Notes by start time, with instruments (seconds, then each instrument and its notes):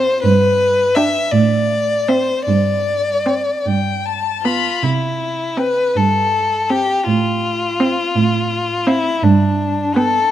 Already playing: viola C4, violin C5 F5
0.23 cello G2, violin B4
0.95 viola D4, violin E5 G5
1.32 cello A2, violin D5
2.08 viola C4, violin C5 E5
2.46 cello G2, violin D5
3.26 viola C4, violin G5
3.66 cello G2, violin G5
4.05 violin A5
4.43 viola B3, violin F4 B5
4.83 cello C3, violin E4
5.57 viola C4, violin B4 G5
5.96 cello G2, violin A4
6.70 viola C4, violin G4 G5
7.06 cello A2, violin F4
7.80 viola C4, violin F5
8.15 cello A2
8.87 viola C4, violin E4 F5
9.23 cello G2, violin D4
9.96 viola B3, violin A4 G5